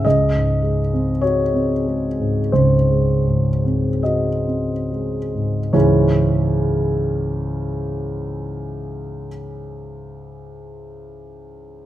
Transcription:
0.05 2.49 C#2 soft
0.05 1.22 D#5 medium
0.34 0.81 G#2 soft
0.62 1.10 G#3 soft
0.93 1.41 C4 soft
1.21 1.73 F#4 soft
1.21 2.52 C#5 medium
1.54 2.05 C4 soft
1.86 2.39 G#3 soft
2.19 2.74 G#2 soft
2.52 5.70 C#2 soft
2.52 4.02 C5 soft
2.90 3.48 G#3 soft
3.27 3.87 G#2 soft
3.65 4.28 C4 soft
4.03 4.72 F#4 soft
4.03 5.73 D#5 soft
4.47 5.17 C4 soft
4.91 5.59 G#3 soft
5.35 5.72 G#2 soft
5.73 9.28 C#2 soft
5.73 9.28 G#2 soft
5.73 9.27 E3 soft
5.73 9.28 G#3 soft
5.73 9.28 C#4 soft
5.73 9.28 E4 soft
5.73 9.27 C#5 soft

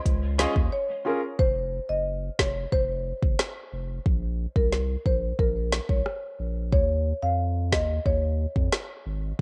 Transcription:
0.06 0.46 C#2 loud
0.06 kick medium
0.06 closed hi-hat medium
0.38 0.55 G#3 loud
0.38 0.52 C#4 loud
0.38 0.55 C#4 medium
0.38 0.52 F4 medium
0.38 0.55 F4 loud
0.38 0.53 G#4 medium
0.38 0.54 C5 loud
0.38 0.53 D#5 loud
0.38 snare loud
0.38 closed hi-hat medium
0.38 cabasa medium
0.38 high woodblock medium
0.55 0.69 D#2 medium
0.55 muted clean electric guitar stroke medium
0.55 kick medium
0.73 1.20 C#5 medium
1.05 1.19 C#4 medium
1.05 1.19 F4 medium
1.05 1.19 G#4 medium
1.05 1.20 A#4 medium
1.39 1.80 F1 loud
1.39 1.52 C5 loud
1.39 kick loud
1.89 2.30 F#1 medium
1.89 2.03 D#5 medium
2.39 2.66 F1 medium
2.39 2.52 C#5 medium
2.39 kick medium
2.39 snare loud
2.72 3.13 F1 loud
2.72 3.19 C5 loud
2.72 kick medium
3.22 3.36 F#1 medium
3.22 kick medium
3.39 cross-stick medium
3.39 snare loud
3.73 4.00 F1 medium
4.06 4.46 A#1 loud
4.06 kick loud
4.56 4.96 C2 medium
4.56 4.69 A#4 medium
4.56 kick medium
4.73 snare medium
5.06 5.33 A#1 medium
5.06 5.19 C5 medium
5.06 kick medium
5.39 5.80 A#1 loud
5.39 5.53 A#4 medium
5.39 kick medium
5.72 snare loud
5.89 6.03 C2 medium
5.89 6.03 C#5 medium
5.89 kick medium
6.06 cross-stick medium
6.39 6.74 A#1 medium
6.72 7.13 D#2 loud
6.72 6.86 C#5 loud
6.72 kick loud
7.22 7.74 F2 medium
7.22 7.36 F5 medium
7.72 8.00 D#2 medium
7.72 7.86 D#5 medium
7.72 kick medium
7.72 snare loud
8.06 8.46 D#2 loud
8.06 8.53 C#5 loud
8.06 kick medium
8.56 8.69 F2 medium
8.56 kick medium
8.73 cross-stick medium
8.73 snare loud
9.06 9.33 G#1 loud

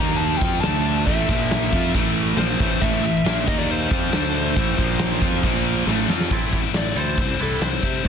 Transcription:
0.00 0.38 D#2 loud
0.00 0.41 D#3 loud
0.00 0.42 A#3 loud
0.00 0.42 D#4 loud
0.00 0.14 A#5 loud
0.09 snare soft
0.17 0.37 A5 loud
0.17 crash medium
0.38 0.63 F3 loud
0.38 0.60 G5 loud
0.38 kick loud
0.38 crash medium
0.42 0.62 F2 medium
0.42 0.63 C4 loud
0.42 0.63 F4 loud
0.61 1.04 D2 loud
0.61 1.07 D3 loud
0.61 1.07 A3 loud
0.61 1.03 A5 loud
0.61 snare loud
0.61 crash medium
0.65 1.07 D4 loud
0.85 crash medium
1.06 1.27 A1 loud
1.06 1.29 A2 loud
1.06 1.29 E3 loud
1.06 1.29 A3 loud
1.06 1.90 E5 medium
1.06 kick loud
1.06 crash medium
1.29 1.70 A#1 loud
1.29 1.71 A#2 loud
1.29 1.71 F3 medium
1.29 1.73 A#3 loud
1.29 kick loud
1.29 crash medium
1.51 snare loud
1.51 crash medium
1.72 1.93 F2 loud
1.72 1.93 F3 loud
1.72 1.94 C4 loud
1.72 1.94 F4 loud
1.72 kick loud
1.72 crash loud
1.94 2.35 A1 medium
1.94 2.38 A2 medium
1.94 2.38 E3 medium
1.94 2.38 A3 loud
1.94 kick loud
1.94 crash medium
2.17 crash medium
2.37 2.58 A#1 loud
2.37 2.59 A#2 medium
2.37 2.60 F3 loud
2.37 2.60 A#3 loud
2.37 2.83 C5 loud
2.37 snare loud
2.37 crash medium
2.60 2.80 A1 loud
2.60 2.80 A2 medium
2.60 2.81 E3 loud
2.60 2.82 A3 loud
2.60 kick loud
2.60 crash medium
2.81 3.02 A1 loud
2.81 3.02 A2 loud
2.81 3.02 E3 loud
2.81 3.04 A3 loud
2.81 3.03 E5 loud
2.81 kick loud
2.81 crash medium
3.03 3.24 A1 medium
3.03 3.21 A2 medium
3.03 3.21 E3 medium
3.03 3.48 E5 loud
3.03 crash medium
3.25 3.46 A#1 medium
3.25 3.46 A#2 medium
3.25 3.47 F3 loud
3.25 3.47 A#3 loud
3.25 snare loud
3.25 crash medium
3.46 3.88 D#2 loud
3.46 3.89 D#3 loud
3.46 3.89 A#3 loud
3.46 3.90 D#4 loud
3.46 3.58 D#5 loud
3.46 kick loud
3.46 crash loud
3.59 3.69 D5 loud
3.59 snare soft
3.69 5.84 C5 medium
3.69 crash medium
3.89 4.11 F2 medium
3.89 4.11 F3 loud
3.89 4.12 C4 loud
3.89 4.12 F4 loud
3.89 kick loud
3.89 crash medium
4.12 4.54 D2 medium
4.12 4.55 D3 medium
4.12 4.55 A3 medium
4.12 4.56 D4 medium
4.12 snare loud
4.12 crash medium
4.34 crash medium
4.55 4.77 A1 loud
4.55 4.77 A2 medium
4.55 4.77 E3 medium
4.55 4.77 A3 loud
4.55 kick loud
4.55 crash medium
4.77 5.19 A#1 loud
4.77 5.21 A#2 medium
4.77 5.21 F3 loud
4.77 5.22 A#3 loud
4.77 kick loud
4.77 crash medium
4.99 snare loud
4.99 crash medium
5.21 5.42 F2 medium
5.21 5.43 F3 loud
5.21 5.44 C4 loud
5.21 5.44 F4 loud
5.21 kick loud
5.21 crash medium
5.32 snare soft
5.43 5.84 A#1 medium
5.43 5.87 A#2 loud
5.43 5.87 F3 medium
5.43 5.88 A#3 loud
5.43 kick loud
5.43 crash medium
5.65 crash medium
5.86 6.07 A1 loud
5.86 6.08 A2 loud
5.86 6.09 E3 loud
5.86 6.09 A3 loud
5.86 snare medium
6.08 6.29 F2 medium
6.08 6.30 F3 loud
6.08 6.31 C4 loud
6.08 6.31 F4 medium
6.08 snare medium
6.20 snare medium
6.29 6.65 A1 loud
6.29 6.94 A2 medium
6.29 6.95 E3 medium
6.29 6.95 A3 medium
6.29 6.95 C4 loud
6.29 6.94 E4 loud
6.29 6.60 A4 medium
6.29 kick loud
6.29 ride medium
6.53 kick medium
6.53 ride medium
6.74 6.91 A1 medium
6.74 6.97 D5 medium
6.74 snare loud
6.74 ride medium
6.95 7.19 D2 medium
6.95 7.16 A2 medium
6.95 7.17 E3 medium
6.95 7.17 A3 medium
6.95 7.17 C4 medium
6.95 7.16 E4 medium
6.95 7.18 A4 medium
6.95 7.39 C5 medium
6.95 ride medium
7.17 7.35 C2 medium
7.17 7.82 C3 medium
7.17 7.82 E3 medium
7.17 7.83 G3 medium
7.17 7.83 C4 medium
7.17 7.83 E4 medium
7.17 kick loud
7.17 ride medium
7.39 7.57 C2 medium
7.39 7.69 G3 medium
7.39 7.69 C4 medium
7.39 7.68 D4 medium
7.39 7.68 E4 medium
7.39 7.62 A4 loud
7.39 ride medium
7.61 7.78 C2 medium
7.61 8.08 C5 loud
7.61 snare loud
7.61 ride medium
7.82 8.00 C3 medium
7.82 8.05 G3 medium
7.82 8.05 C4 medium
7.82 8.04 E4 medium
7.82 kick medium
7.82 ride medium
7.87 8.06 C3 medium
7.87 8.04 E3 medium
8.04 8.08 D2 medium
8.04 8.08 D3 medium
8.04 kick loud
8.04 ride medium

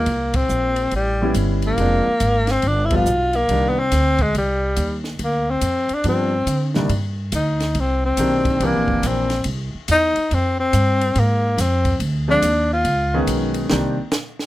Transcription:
0.00 0.38 A#3 medium
0.06 0.49 C2 medium
0.06 kick soft
0.06 ride medium
0.34 0.94 C4 medium
0.34 kick medium
0.34 ride medium
0.49 0.91 A#1 medium
0.49 hi-hat pedal medium
0.76 ride soft
0.91 1.34 A1 medium
0.91 kick soft
0.91 ride soft
0.96 1.34 G3 medium
1.22 1.76 G3 medium
1.22 1.76 B3 medium
1.22 1.76 C#4 medium
1.22 1.77 E4 medium
1.34 1.77 G1 medium
1.34 kick soft
1.34 hi-hat pedal medium
1.34 ride medium
1.62 ride soft
1.67 2.53 A#3 medium
1.78 2.04 F1 medium
1.78 2.04 F3 medium
1.78 2.04 G#3 medium
1.78 2.04 C4 medium
1.78 2.05 D4 medium
1.78 kick soft
1.78 ride medium
2.07 muted upright bass stroke soft
2.20 2.62 G#1 medium
2.20 kick soft
2.20 hi-hat pedal medium
2.20 ride medium
2.47 snare soft
2.47 ride soft
2.51 2.69 C4 medium
2.62 3.05 G1 medium
2.62 kick soft
2.62 ride soft
2.68 2.87 D4 medium
2.85 2.97 E4 medium
2.91 3.06 F3 medium
2.91 3.06 G3 medium
2.91 3.06 B3 medium
2.91 3.06 F4 medium
2.91 kick medium
2.91 ride medium
2.96 3.38 F4 loud
3.06 3.49 B1 medium
3.06 hi-hat pedal medium
3.33 3.71 A#3 medium
3.33 ride soft
3.49 3.91 C2 medium
3.49 3.75 D#3 medium
3.49 3.75 G3 soft
3.49 3.75 A#3 soft
3.49 3.75 D4 medium
3.49 kick soft
3.49 ride medium
3.69 3.80 B3 medium
3.79 4.24 C4 medium
3.92 4.33 D2 medium
3.92 kick soft
3.92 snare soft
3.92 hi-hat pedal medium
3.92 ride medium
4.18 4.36 G#3 medium
4.18 kick medium
4.18 ride soft
4.35 4.76 C2 medium
4.35 5.02 G3 medium
4.35 kick soft
4.35 ride medium
4.76 5.19 D#2 medium
4.76 kick soft
4.76 hi-hat pedal medium
4.76 ride medium
5.04 snare soft
5.19 5.61 D2 medium
5.19 kick soft
5.19 ride medium
5.24 5.52 A#3 medium
5.51 5.96 C4 medium
5.61 5.88 F2 medium
5.61 kick soft
5.61 hi-hat pedal medium
5.61 ride medium
5.89 muted upright bass stroke soft
5.89 ride soft
5.94 6.07 D4 medium
6.04 6.46 G2 medium
6.04 6.30 F3 medium
6.04 6.30 G3 soft
6.04 6.30 B3 medium
6.04 6.30 D4 medium
6.04 kick soft
6.04 ride medium
6.08 6.73 C4 medium
6.46 6.88 D3 medium
6.46 kick soft
6.46 hi-hat pedal medium
6.46 ride medium
6.74 6.89 C2 medium
6.74 6.89 D#3 medium
6.74 6.89 G3 medium
6.74 6.90 A#3 medium
6.74 6.89 D4 medium
6.74 snare medium
6.89 7.31 G2 medium
6.89 kick soft
6.89 ride medium
7.32 7.74 D2 medium
7.32 7.81 D#4 medium
7.32 kick soft
7.32 hi-hat pedal medium
7.32 ride medium
7.60 snare soft
7.60 ride soft
7.75 8.17 C2 medium
7.75 kick soft
7.75 ride medium
7.80 8.05 C4 medium
8.05 8.67 C4 medium
8.17 8.59 B1 medium
8.17 8.61 D#3 medium
8.17 8.61 A#3 medium
8.17 8.61 C4 medium
8.17 8.61 D4 medium
8.17 8.61 G4 medium
8.17 kick soft
8.17 hi-hat pedal medium
8.17 ride medium
8.45 kick medium
8.45 ride soft
8.60 8.75 C2 medium
8.60 9.26 E3 medium
8.60 9.26 A#3 medium
8.60 9.26 C4 medium
8.60 9.26 D4 medium
8.60 9.26 G4 medium
8.60 kick soft
8.60 ride medium
8.65 9.09 A#3 medium
8.75 8.89 A#1 medium
8.88 9.02 G1 medium
8.88 kick medium
9.02 9.44 A#1 medium
9.02 kick soft
9.02 hi-hat pedal medium
9.02 ride medium
9.07 9.48 C4 medium
9.30 snare soft
9.30 ride soft
9.44 9.71 C2 medium
9.44 kick soft
9.44 ride medium
9.75 muted upright bass stroke soft
9.88 10.14 E2 medium
9.88 10.35 D#4 loud
9.88 kick soft
9.88 hi-hat pedal medium
9.88 ride medium
10.16 muted upright bass stroke soft
10.16 ride soft
10.31 10.72 F2 medium
10.31 10.59 C4 medium
10.31 kick soft
10.31 ride medium
10.59 11.21 C4 medium
10.73 11.14 G2 medium
10.73 kick soft
10.73 hi-hat pedal medium
10.73 ride medium
11.01 ride soft
11.15 11.57 G#2 medium
11.15 kick soft
11.15 ride medium
11.20 11.63 A#3 medium
11.58 11.99 F2 medium
11.58 12.02 C4 medium
11.58 kick soft
11.58 snare soft
11.58 hi-hat pedal soft
11.58 ride medium
11.85 kick medium
11.85 ride soft
12.00 12.41 D2 medium
12.00 kick soft
12.00 ride medium
12.28 12.42 F3 medium
12.28 12.42 G#3 medium
12.28 12.42 C4 medium
12.28 12.42 D4 medium
12.28 12.69 D4 loud
12.28 12.42 F4 medium
12.42 12.84 D#2 medium
12.42 kick soft
12.42 hi-hat pedal medium
12.42 ride medium
12.73 13.25 F4 medium
12.85 13.26 C#2 medium
12.85 kick soft
12.85 ride medium
13.14 13.68 D#3 medium
13.14 13.68 G#3 medium
13.14 13.68 B3 medium
13.14 13.68 C#4 medium
13.14 13.68 G#4 medium
13.27 13.69 B1 medium
13.27 kick soft
13.27 hi-hat pedal medium
13.27 ride medium
13.54 ride soft
13.70 13.98 C2 medium
13.70 13.95 D#3 medium
13.70 13.95 A#3 medium
13.70 13.95 C4 medium
13.70 13.95 D4 medium
13.70 13.95 G4 medium
13.70 snare medium
14.11 snare loud
14.11 hi-hat pedal medium
14.39 snare medium

